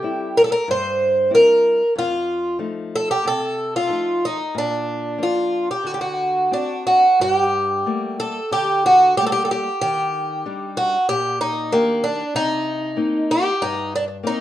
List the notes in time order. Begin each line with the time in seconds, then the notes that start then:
Already playing: G4
0.02 G3 C4 E4
0.37 A#4
0.44 A4
0.52 A#4
0.68 G2 C5
1.30 G3 C4 E4
1.35 A#4
1.96 F2 F4
2.59 F3 A3 D#4
2.96 A4
3.11 G4
3.25 C3 A4
3.76 F4
3.89 F3 A3 D#4
4.25 D#4
4.55 A#2 D4
5.18 F3 A#3 D4
5.23 F4
5.71 G4
5.84 D3 F#4
5.94 G4
6.01 F#4
6.51 C4 D4 F#4
6.87 F#4
7.20 G2 F#4
7.32 G4
7.86 G3 A3 A#3
8.20 A4
8.51 D3 G4
8.86 F#4
9.17 G3 A3 A#3 G4
9.27 A4
9.32 G4
9.45 A4
9.51 G4
9.81 D#3 G4
10.46 G3 D4 D#4
10.77 F#4
11.09 A#2 G4
11.41 D#4
11.72 D#3 A#3 D4 G4
12.04 D4
12.35 C3 D#4
12.97 A#3 C4 D#4
13.31 G4
13.62 G2 D#4
13.95 D4
14.23 A#3 C4 D#4